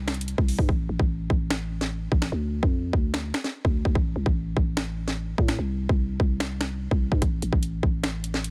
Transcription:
0.00 0.35 C2 loud
0.08 finger snap medium
0.08 snare medium
0.08 closed hi-hat soft
0.14 closed hi-hat medium
0.21 closed hi-hat medium
0.28 closed hi-hat medium
0.38 0.58 C2 loud
0.38 kick medium
0.48 open hi-hat medium
0.59 0.68 G2 loud
0.59 kick loud
0.69 0.88 A1 loud
0.69 kick loud
0.89 0.99 A1 loud
0.99 1.29 A1 loud
0.99 kick loud
1.30 2.08 A1 loud
1.30 kick medium
1.50 finger snap medium
1.50 snare loud
1.81 snare medium
2.12 2.31 A1 loud
2.12 kick loud
2.22 finger snap medium
2.22 snare medium
2.32 2.61 D2 loud
2.63 2.92 F2 loud
2.63 kick loud
2.93 3.33 D2 loud
2.93 kick medium
3.14 finger snap medium
3.14 snare loud
3.34 finger snap medium
3.34 snare medium
3.44 snare medium
3.65 3.84 D2 loud
3.65 kick medium
3.85 3.95 D2 loud
3.85 kick loud
3.95 4.15 A1 loud
3.95 kick loud
4.16 4.26 C2 loud
4.26 4.55 A1 loud
4.26 kick medium
4.57 5.35 A1 loud
4.57 kick medium
4.77 finger snap medium
4.77 snare loud
5.08 snare medium
5.38 5.58 A2 loud
5.38 kick loud
5.48 finger snap medium
5.48 snare medium
5.59 5.88 C2 loud
5.89 6.19 C2 loud
5.89 kick loud
6.20 6.88 C2 loud
6.20 kick medium
6.40 finger snap medium
6.40 snare loud
6.61 finger snap medium
6.61 snare medium
6.91 7.11 C2 loud
6.91 kick medium
7.12 7.21 G2 loud
7.12 kick loud
7.22 7.41 A1 loud
7.22 kick loud
7.22 closed hi-hat medium
7.42 7.52 A1 loud
7.42 closed hi-hat medium
7.53 7.82 A1 loud
7.53 kick loud
7.63 closed hi-hat medium
7.83 8.51 A1 loud
7.83 kick medium
8.04 finger snap medium
8.04 snare loud
8.04 closed hi-hat medium
8.24 closed hi-hat medium
8.34 snare medium
8.44 closed hi-hat medium

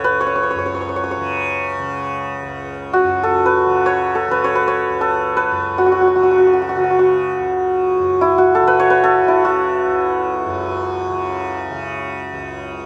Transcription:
0.00 2.42 C#2 medium
0.00 0.54 F#2 medium
0.00 1.17 C#3 medium
0.00 1.29 A4 medium
0.00 0.20 C#5 medium
0.04 2.76 B4 medium
0.21 0.26 C#5 medium
0.27 0.35 C#5 medium
0.36 0.43 C#5 medium
0.43 0.50 C#5 medium
0.51 3.03 F#2 medium
0.51 0.58 C#5 medium
0.59 0.66 C#5 medium
0.66 0.74 C#5 medium
0.75 0.81 C#5 soft
0.81 0.89 C#5 medium
0.89 0.96 C#5 soft
0.96 1.03 C#5 medium
1.04 1.11 C#5 medium
1.11 3.66 C#5 medium
1.17 1.79 C#3 medium
1.79 3.66 C#3 medium
2.42 4.89 C#2 medium
2.93 5.78 F#4 medium
3.03 5.50 F#2 medium
3.23 4.15 A4 medium
3.46 4.31 B4 medium
3.66 4.28 C#3 medium
3.86 4.44 C#5 medium
4.15 5.01 A4 medium
4.28 6.15 C#3 medium
4.28 4.55 B4 medium
4.44 4.67 C#5 medium
4.55 5.36 B4 medium
4.68 7.23 C#5 medium
4.89 7.38 C#2 medium
5.01 7.92 A4 medium
5.37 8.08 B4 medium
5.51 7.98 F#2 medium
5.78 5.86 F#4 medium
5.86 5.92 F#4 soft
5.92 6.01 F#4 medium
6.01 6.07 F#4 soft
6.08 6.15 F#4 soft
6.15 6.76 C#3 medium
6.15 6.23 F#4 soft
6.23 6.31 F#4 soft
6.31 6.38 F#4 soft
6.38 6.47 F#4 soft
6.47 6.53 F#4 soft
6.53 6.61 F#4 soft
6.62 6.69 F#4 soft
6.69 6.76 F#4 soft
6.76 8.62 C#3 medium
6.76 6.83 F#4 soft
6.84 6.90 F#4 soft
6.91 6.99 F#4 soft
6.99 8.38 F#4 medium
7.39 9.85 C#2 medium
7.99 10.46 F#2 medium
8.21 9.28 E4 medium
8.38 9.44 F#4 medium
8.55 9.03 A4 medium
8.62 9.23 C#3 medium
8.67 8.90 B4 medium
8.80 11.34 C#5 medium
8.90 11.62 B4 medium
9.04 11.95 A4 medium
9.23 11.09 C#3 medium
9.28 12.74 E4 medium
9.45 12.70 F#4 medium
9.86 12.32 C#2 medium
10.46 12.86 F#2 medium
11.09 11.70 C#3 medium
11.70 12.86 C#3 medium
12.33 12.86 C#2 medium

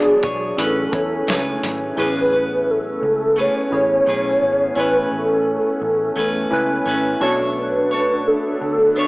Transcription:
0.00 0.57 E3 medium
0.00 1.95 F#3 medium
0.00 0.26 B3 medium
0.00 0.24 D4 medium
0.00 0.54 D4 medium
0.00 0.61 D4 medium
0.00 0.60 F#4 medium
0.00 0.24 G#4 medium
0.00 0.59 G#4 medium
0.00 0.62 G#4 medium
0.00 0.23 C#5 medium
0.00 0.60 C#5 medium
0.00 0.58 D5 medium
0.23 0.52 B1 loud
0.23 0.58 D4 soft
0.23 0.59 G#4 soft
0.23 0.58 C#5 medium
0.23 kick loud
0.23 closed hi-hat medium
0.57 0.86 A1 medium
0.57 1.27 A3 medium
0.57 1.97 A3 medium
0.57 0.87 C#4 medium
0.57 1.96 C#4 medium
0.57 1.28 C#4 medium
0.57 0.88 E4 medium
0.57 0.88 G#4 medium
0.57 1.64 A4 medium
0.57 0.88 B4 medium
0.57 1.30 B4 medium
0.57 closed hi-hat medium
0.92 1.21 E2 medium
0.92 1.61 C#4 medium
0.92 1.61 E4 medium
0.92 1.62 C#5 medium
0.92 1.62 G#5 medium
0.92 kick medium
0.92 closed hi-hat medium
1.27 1.56 C#2 medium
1.27 1.97 A3 medium
1.27 1.98 C#4 medium
1.27 1.99 B4 medium
1.27 snare loud
1.27 closed hi-hat medium
1.63 1.91 G#1 medium
1.63 snare soft
1.63 closed hi-hat medium
1.96 2.99 A1 loud
1.96 2.33 A3 medium
1.96 9.08 A3 medium
1.96 7.18 B3 medium
1.96 2.91 C#4 medium
1.96 2.33 C#4 medium
1.96 7.18 C#4 loud
1.96 2.91 E4 medium
1.96 2.91 G#4 medium
1.96 2.33 G#4 medium
1.96 2.92 B4 medium
1.96 2.31 B4 medium
1.96 2.72 B4 loud
2.33 3.37 C#4 soft
2.33 3.39 B4 soft
2.70 3.42 A4 loud
3.03 3.47 C#2 medium
3.36 4.06 A3 medium
3.36 4.07 C#4 medium
3.36 4.07 G#4 medium
3.36 4.09 B4 medium
3.40 3.74 C#5 loud
3.71 4.00 A1 loud
3.71 4.40 C#4 medium
3.71 4.40 E4 medium
3.71 4.41 G#4 medium
3.71 4.41 C#5 medium
3.71 4.81 C#5 loud
4.06 4.35 B1 medium
4.06 4.75 A3 medium
4.06 4.77 C#4 medium
4.06 4.78 G#4 medium
4.06 4.78 B4 medium
4.42 4.70 G#1 medium
4.75 5.05 A1 loud
4.75 6.15 A3 medium
4.75 5.70 C#4 medium
4.75 6.17 C#4 medium
4.75 5.70 E4 medium
4.75 5.71 B4 medium
4.75 5.71 G#5 medium
4.80 5.13 B4 loud
4.80 6.19 B4 medium
5.11 5.56 A1 medium
5.11 7.19 A4 loud
5.82 6.10 A1 medium
6.16 6.45 E2 medium
6.16 6.85 A3 medium
6.16 6.86 C#4 medium
6.16 6.88 B4 medium
6.51 6.79 C#2 medium
6.51 7.20 C#4 medium
6.51 7.20 E4 medium
6.51 7.21 B4 loud
6.51 7.20 G#5 medium
6.86 7.14 G#1 medium
6.86 7.21 A3 medium
6.86 7.22 C#4 medium
6.86 7.21 B4 medium
7.20 8.33 B1 loud
7.20 9.08 B3 medium
7.20 7.94 B3 medium
7.20 8.34 D4 medium
7.20 9.08 D4 loud
7.20 7.94 D4 medium
7.20 8.35 F#4 medium
7.20 7.91 A4 medium
7.20 8.35 A4 medium
7.20 7.91 C#5 medium
7.20 8.36 C#5 medium
7.58 8.29 B4 loud
7.91 8.96 D4 soft
7.91 8.97 A4 soft
7.91 8.99 C#5 medium
8.27 8.99 A4 loud
8.61 9.06 D2 medium
8.96 9.08 B3 medium
8.96 9.08 D4 medium
8.96 9.08 A4 medium
8.96 9.08 C#5 loud
8.96 9.08 C#5 medium

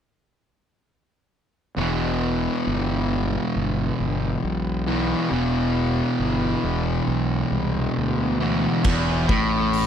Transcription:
1.77 2.46 E1 medium
1.77 4.90 E2 medium
1.77 4.86 B2 loud
1.77 4.87 E3 loud
2.67 3.36 G1 medium
3.56 3.90 G1 medium
4.00 4.34 G1 medium
4.44 5.13 B1 medium
4.87 5.29 E2 medium
4.87 5.30 B2 medium
4.87 5.33 E3 medium
5.30 6.00 E1 medium
5.30 8.37 E2 medium
5.30 8.38 B2 loud
5.30 8.39 E3 medium
6.19 6.54 G1 medium
6.64 6.99 E1 medium
7.07 7.42 B1 medium
7.51 7.86 C2 medium
7.97 8.66 D2 medium
8.40 8.84 E2 medium
8.40 8.83 B2 medium
8.40 8.82 E3 medium
8.84 9.26 E1 medium
8.84 9.28 E2 loud
8.84 kick loud
8.84 crash loud
9.28 9.87 A1 medium
9.28 9.87 A2 loud
9.28 kick loud
9.73 open hi-hat medium

